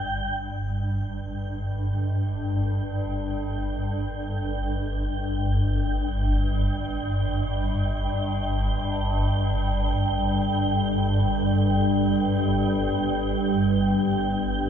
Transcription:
0.00 0.39 G1 medium
0.00 0.40 G2 medium
0.00 0.38 G5 medium
0.39 14.70 G1 medium
0.39 14.70 G2 medium
0.39 14.70 G5 medium
7.78 14.70 G3 medium
8.87 14.70 D4 medium
9.49 14.70 B4 medium
9.73 14.70 G4 medium

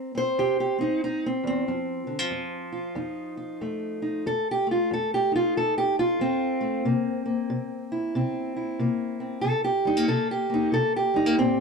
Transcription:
0.00 0.35 E2 medium
0.00 0.14 C4 soft
0.00 0.17 A#4 medium
0.15 0.78 C4 soft
0.15 1.04 C5 loud
0.38 0.99 E2 medium
0.38 0.59 G4 medium
0.60 0.80 G4 medium
0.79 1.26 C4 soft
0.79 1.03 D#4 medium
1.04 1.25 D#4 medium
1.26 1.46 C4 medium
1.43 1.68 E2 medium
1.43 2.77 C4 medium
1.68 2.28 F2 medium
1.68 2.07 F3 soft
2.07 2.19 D3 soft
2.19 4.26 F3 soft
2.31 2.92 F2 medium
2.72 3.36 F4 soft
2.95 3.56 F2 medium
2.95 4.01 D#4 soft
3.37 4.24 F4 soft
3.61 4.22 F2 medium
3.61 4.24 A3 soft
4.02 4.24 D#4 soft
4.26 4.87 F2 medium
4.26 4.49 A4 loud
4.51 4.71 G4 medium
4.67 6.60 A3 soft
4.71 4.92 F4 medium
4.91 5.51 F2 medium
4.91 5.14 A4 medium
5.14 5.35 G4 medium
5.32 6.21 D#4 soft
5.32 5.57 F4 medium
5.57 6.16 F2 medium
5.57 5.77 A4 medium
5.78 5.99 G4 medium
5.99 6.86 F4 loud
6.19 6.80 F2 medium
6.19 8.15 C4 loud
6.61 6.83 A3 soft
6.85 7.45 C3 medium
6.85 7.25 A#3 soft
7.26 8.79 A#3 soft
7.50 8.10 C3 medium
7.92 8.55 E4 medium
8.15 8.75 C3 medium
8.15 9.19 C4 medium
8.56 9.41 E4 soft
8.79 9.39 C3 medium
8.79 9.42 A#3 soft
9.20 9.42 C4 soft
9.41 10.04 C3 medium
9.41 9.64 A4 medium
9.64 10.08 G4 medium
9.85 9.97 G3 soft
9.85 10.09 D#4 medium
9.97 10.48 A#3 soft
10.08 10.69 C3 medium
10.08 10.30 A4 loud
10.31 10.73 G4 medium
10.50 11.14 A#3 medium
10.54 10.74 D#4 medium
10.72 11.32 C3 medium
10.72 10.95 A4 loud
10.96 11.60 G4 medium
11.14 11.26 G3 soft
11.14 11.38 D#4 medium
11.26 11.38 A#3 soft
11.38 11.60 A#2 medium
11.38 11.60 C4 loud

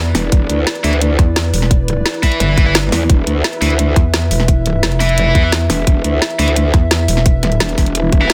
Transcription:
0.00 0.13 E2 loud
0.00 8.33 E4 medium
0.00 8.33 B4 medium
0.00 3.07 D5 medium
0.15 0.31 E1 loud
0.15 snare soft
0.15 open hi-hat medium
0.32 0.48 E1 medium
0.32 kick loud
0.32 closed hi-hat medium
0.49 0.65 D2 medium
0.49 closed hi-hat medium
0.67 snare loud
0.67 closed hi-hat medium
0.75 closed hi-hat soft
0.84 1.17 D2 loud
0.84 0.93 E4 medium
0.84 0.93 B4 medium
0.84 0.93 E5 medium
0.84 open hi-hat medium
0.93 closed hi-hat soft
1.01 closed hi-hat medium
1.19 1.52 E2 loud
1.19 kick loud
1.19 closed hi-hat medium
1.36 snare loud
1.36 closed hi-hat medium
1.53 2.04 E1 loud
1.53 open hi-hat medium
1.62 snare soft
1.71 kick loud
1.71 closed hi-hat medium
1.88 closed hi-hat medium
2.06 snare loud
2.06 closed hi-hat medium
2.14 closed hi-hat soft
2.23 2.64 E4 medium
2.23 2.64 B4 medium
2.23 2.64 E5 medium
2.23 kick medium
2.23 snare soft
2.23 open hi-hat medium
2.32 closed hi-hat soft
2.40 2.91 G1 medium
2.40 closed hi-hat medium
2.57 kick loud
2.57 closed hi-hat medium
2.66 2.75 E4 medium
2.66 2.75 B4 medium
2.66 2.75 E5 medium
2.75 snare loud
2.75 closed hi-hat medium
2.92 3.08 E2 loud
2.92 snare soft
2.92 open hi-hat medium
3.09 3.25 E1 medium
3.09 8.33 E5 medium
3.09 kick loud
3.09 closed hi-hat medium
3.27 3.43 D2 medium
3.27 closed hi-hat medium
3.44 snare loud
3.44 closed hi-hat medium
3.53 closed hi-hat soft
3.61 3.95 D2 loud
3.61 3.71 E4 medium
3.61 3.71 B4 medium
3.61 3.71 E5 medium
3.61 open hi-hat medium
3.70 closed hi-hat soft
3.79 closed hi-hat medium
3.96 4.30 E2 loud
3.96 kick loud
3.96 closed hi-hat medium
4.14 snare loud
4.14 closed hi-hat medium
4.31 4.82 E1 loud
4.31 open hi-hat medium
4.40 snare soft
4.48 kick loud
4.48 closed hi-hat medium
4.66 closed hi-hat medium
4.83 5.34 F1 loud
4.83 snare loud
4.83 closed hi-hat medium
4.92 closed hi-hat soft
5.00 5.42 E4 medium
5.00 5.42 B4 medium
5.00 5.42 E5 medium
5.00 snare soft
5.00 open hi-hat medium
5.09 closed hi-hat soft
5.18 closed hi-hat medium
5.35 5.68 E2 loud
5.35 kick loud
5.35 closed hi-hat medium
5.43 5.53 E4 loud
5.43 5.53 B4 medium
5.43 5.53 E5 medium
5.52 snare loud
5.52 closed hi-hat medium
5.70 5.86 E1 loud
5.70 snare soft
5.70 open hi-hat medium
5.87 6.03 E1 loud
5.87 kick loud
5.87 closed hi-hat medium
6.04 6.20 D2 loud
6.04 closed hi-hat medium
6.22 snare loud
6.22 closed hi-hat medium
6.30 closed hi-hat soft
6.39 6.72 D2 loud
6.39 6.48 E4 medium
6.39 6.48 B4 medium
6.39 6.48 E5 medium
6.39 open hi-hat medium
6.48 closed hi-hat soft
6.56 closed hi-hat loud
6.74 7.07 E2 loud
6.74 kick loud
6.74 closed hi-hat medium
6.91 snare loud
6.91 closed hi-hat loud
7.08 7.59 E1 loud
7.08 open hi-hat medium
7.17 snare soft
7.26 kick loud
7.26 closed hi-hat loud
7.43 snare soft
7.43 closed hi-hat medium
7.52 closed hi-hat soft
7.60 7.76 E1 loud
7.60 snare loud
7.60 closed hi-hat medium
7.69 closed hi-hat soft
7.78 8.11 E1 loud
7.78 kick medium
7.78 snare soft
7.78 open hi-hat medium
7.86 closed hi-hat soft
7.95 closed hi-hat loud
8.12 8.30 E1 loud
8.12 kick loud
8.12 closed hi-hat medium
8.21 8.30 E4 medium
8.21 8.30 B4 medium
8.21 8.30 E5 medium
8.30 snare loud
8.30 closed hi-hat loud

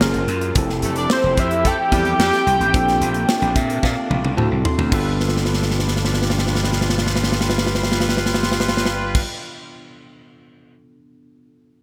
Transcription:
0.00 0.12 F#1 medium
0.00 0.55 F#3 medium
0.00 0.55 G#3 medium
0.00 0.54 A#3 medium
0.00 0.56 C#4 medium
0.00 0.55 F4 medium
0.00 0.56 F4 medium
0.00 0.56 G#4 medium
0.00 0.56 A#4 medium
0.00 0.25 C5 loud
0.00 snare loud
0.14 0.26 F#1 medium
0.14 closed hi-hat soft
0.28 0.51 F#2 loud
0.28 closed hi-hat medium
0.41 closed hi-hat soft
0.55 0.79 F1 loud
0.55 2.72 F3 medium
0.55 4.88 A3 medium
0.55 1.89 C4 medium
0.55 2.72 E4 medium
0.55 1.89 E4 medium
0.55 2.72 G4 medium
0.55 1.90 G4 medium
0.55 1.90 A4 medium
0.55 kick loud
0.55 closed hi-hat medium
0.69 snare soft
0.82 1.05 F1 loud
0.82 0.94 A3 medium
0.82 0.94 A4 medium
0.82 closed hi-hat medium
0.96 1.07 D4 medium
0.96 1.07 D5 loud
0.96 closed hi-hat medium
1.10 1.41 C5 medium
1.10 snare loud
1.24 1.35 F1 loud
1.37 1.72 F2 loud
1.37 1.49 C4 medium
1.37 1.49 C5 medium
1.37 1.68 E5 medium
1.37 kick medium
1.37 closed hi-hat medium
1.51 closed hi-hat medium
1.65 1.76 A3 medium
1.65 1.76 A4 loud
1.65 4.39 G5 loud
1.65 kick medium
1.65 closed hi-hat medium
1.92 2.15 E2 medium
1.92 2.14 G3 loud
1.92 2.72 C4 soft
1.92 2.74 E4 soft
1.92 2.14 G4 loud
1.92 2.74 G4 soft
1.92 2.75 A4 soft
1.92 kick medium
1.92 closed hi-hat medium
2.05 closed hi-hat soft
2.19 2.30 F2 medium
2.19 2.41 G3 loud
2.19 2.41 G4 loud
2.19 snare loud
2.33 snare soft
2.33 closed hi-hat soft
2.47 2.58 C2 medium
2.47 closed hi-hat medium
2.60 2.72 A1 medium
2.60 closed hi-hat medium
2.73 2.97 A#1 loud
2.73 4.90 C3 medium
2.73 4.36 A#3 medium
2.73 4.34 C4 medium
2.73 4.34 D4 medium
2.73 4.90 D4 medium
2.73 4.35 F4 medium
2.73 4.35 A4 medium
2.73 kick loud
2.73 closed hi-hat medium
2.88 snare soft
2.88 closed hi-hat soft
3.01 3.24 A#1 loud
3.01 closed hi-hat medium
3.14 closed hi-hat medium
3.29 snare loud
3.42 3.53 A#1 loud
3.42 closed hi-hat soft
3.56 3.78 A#2 loud
3.56 3.81 E5 medium
3.56 kick medium
3.56 closed hi-hat medium
3.70 closed hi-hat medium
3.83 3.94 A#2 loud
3.83 4.34 F5 medium
3.83 kick medium
3.83 snare medium
4.10 4.22 A#1 loud
4.10 high tom medium
4.24 4.35 C2 medium
4.24 high tom medium
4.37 4.49 D2 loud
4.37 4.91 F#3 medium
4.37 4.92 C4 medium
4.37 4.92 E4 medium
4.37 4.92 F#4 medium
4.37 4.92 A4 medium
4.37 4.63 A5 medium
4.37 mid tom medium
4.51 4.63 C2 medium
4.65 4.90 C6 medium
4.65 floor tom loud
4.78 4.90 D2 medium
4.78 floor tom medium
4.89 9.22 G1 medium
4.89 9.21 B2 medium
4.89 9.21 F3 medium
4.89 9.21 G3 medium
4.89 9.20 B3 medium
4.89 9.21 D4 medium
4.89 9.21 F4 medium
4.89 9.22 F4 medium
4.89 9.21 B4 medium
4.89 kick loud
4.89 crash loud
4.94 9.23 A4 medium
5.20 snare soft
5.29 snare soft
5.37 snare medium
5.45 snare medium
5.54 snare soft
5.62 snare medium
5.71 snare medium
5.79 snare medium
5.88 snare soft
5.96 snare soft
6.05 snare medium
6.13 snare medium
6.22 snare medium
6.30 snare medium
6.38 snare medium
6.47 snare medium
6.55 snare medium
6.64 snare medium
6.72 snare medium
6.81 snare medium
6.89 snare medium
6.98 snare medium
7.07 snare medium
7.16 snare medium
7.24 snare medium
7.32 snare medium
7.41 snare medium
7.50 snare medium
7.58 snare medium
7.67 snare medium
7.75 snare medium
7.83 snare medium
7.92 snare medium
8.00 snare medium
8.09 snare medium
8.17 snare medium
8.26 snare medium
8.34 snare medium
8.43 snare medium
8.52 snare medium
8.60 snare medium
8.68 snare medium
8.77 snare medium
8.86 snare medium
9.15 kick loud
9.15 crash loud

